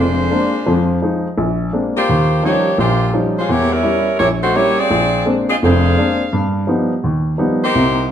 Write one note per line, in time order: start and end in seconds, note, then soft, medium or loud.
0.00 0.27 F1 medium
0.00 0.27 F2 medium
0.00 0.99 G#3 medium
0.00 0.99 D4 medium
0.00 0.99 F4 medium
0.00 0.99 C5 medium
0.31 0.55 G#3 soft
0.31 0.55 A#3 medium
0.31 0.55 C4 soft
0.31 0.55 D4 medium
0.66 0.97 F2 medium
0.66 0.97 F3 medium
1.02 1.26 F3 medium
1.02 1.26 G#3 soft
1.02 1.27 D#4 medium
1.38 1.68 A#1 medium
1.72 1.97 G#3 medium
1.72 1.97 A#3 soft
1.72 1.97 C4 soft
1.72 1.97 D4 medium
1.96 2.41 A#3 medium
1.96 2.41 F4 medium
1.96 2.41 G4 medium
1.96 2.41 C5 medium
2.09 2.39 D#2 medium
2.43 2.67 F3 medium
2.43 2.68 G3 medium
2.43 2.78 A#3 medium
2.43 2.68 C#4 medium
2.43 2.68 D#4 medium
2.43 2.78 F4 medium
2.43 2.78 G4 medium
2.43 2.78 C#5 medium
2.78 3.09 A#1 medium
2.78 3.09 A#2 medium
2.78 3.13 A#3 medium
2.78 3.13 F4 medium
2.78 3.13 G4 medium
2.78 3.13 C5 medium
3.14 3.38 F3 medium
3.14 3.38 G3 soft
3.14 3.38 C#4 soft
3.14 3.38 D#4 medium
3.38 3.50 G#3 medium
3.38 3.50 C#4 medium
3.38 3.50 F4 medium
3.38 3.50 C5 medium
3.49 3.80 E2 medium
3.49 3.73 A#3 medium
3.49 3.72 E4 medium
3.49 3.73 G4 medium
3.49 3.73 C#5 loud
3.73 4.21 G3 medium
3.73 4.21 C#4 medium
3.73 4.18 E4 medium
3.73 4.21 A#4 loud
3.83 4.08 G3 medium
3.83 4.09 C#4 soft
3.83 4.09 E4 medium
4.19 4.51 A#1 medium
4.19 4.30 A#3 medium
4.19 4.30 E4 medium
4.19 4.30 G4 medium
4.19 4.30 C#5 loud
4.43 4.55 A3 medium
4.43 4.55 D#4 medium
4.43 4.55 F#4 medium
4.43 4.55 C5 loud
4.55 4.80 G3 soft
4.55 4.78 A#3 medium
4.55 4.80 C#4 soft
4.55 4.78 E4 medium
4.55 4.80 E4 medium
4.55 4.78 G4 medium
4.55 4.78 C#5 loud
4.79 5.27 C4 loud
4.79 5.27 F4 loud
4.79 5.27 G#4 loud
4.79 5.27 D5 loud
4.91 5.21 A#1 medium
5.25 5.50 G#3 medium
5.25 5.50 A#3 medium
5.25 5.50 C4 medium
5.25 5.50 D4 medium
5.50 5.55 C4 medium
5.50 5.55 F4 loud
5.50 5.56 G#4 loud
5.50 5.56 D#5 loud
5.63 5.93 F1 medium
5.63 5.93 F2 medium
5.63 6.30 D4 medium
5.63 6.30 G#4 loud
5.63 6.30 C5 loud
5.63 6.65 F5 loud
5.97 6.21 G#3 medium
5.97 6.21 A#3 medium
5.97 6.21 C4 medium
5.97 6.21 D4 medium
6.33 6.63 G2 medium
6.67 6.91 F3 medium
6.67 6.92 G3 medium
6.67 6.92 B3 medium
6.67 6.92 D#4 medium
7.04 7.34 D#2 medium
7.38 7.62 F3 medium
7.38 7.62 G3 medium
7.38 7.62 B3 medium
7.38 7.63 D#4 medium
7.64 8.07 A#3 medium
7.64 8.08 D#4 medium
7.64 8.08 G4 medium
7.64 8.08 C5 loud
7.75 8.05 C2 medium